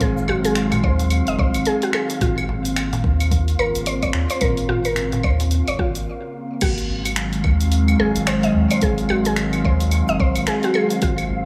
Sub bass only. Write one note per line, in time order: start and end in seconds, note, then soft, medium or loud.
0.01 0.23 G#1 medium
0.28 0.85 G#1 medium
0.83 1.21 D#2 loud
1.28 1.36 F#1 medium
1.39 1.51 C2 medium
1.55 1.64 G#1 loud
2.21 2.44 G#1 medium
2.48 3.05 G#1 medium
3.04 3.55 D#2 loud
3.59 3.71 G#1 loud
3.75 4.10 G#1 medium
4.14 4.26 D#2 medium
4.41 4.64 G#1 medium
4.69 5.26 G#1 loud
5.24 5.62 D#2 loud
5.68 5.76 G#1 medium
5.79 6.07 G#1 medium
6.62 6.84 G#1 loud
6.89 7.46 G#1 medium
7.44 7.95 D#2 loud
7.99 8.12 G#1 medium
8.16 8.50 G#1 loud
8.54 8.67 D#2 medium
8.82 9.04 G#1 loud
9.10 9.66 G#1 loud
9.64 10.02 D#2 loud
10.09 10.17 F#1 medium
10.20 10.32 C2 medium
10.36 10.45 G#1 loud
11.02 11.24 G#1 medium
11.29 11.45 G#1 medium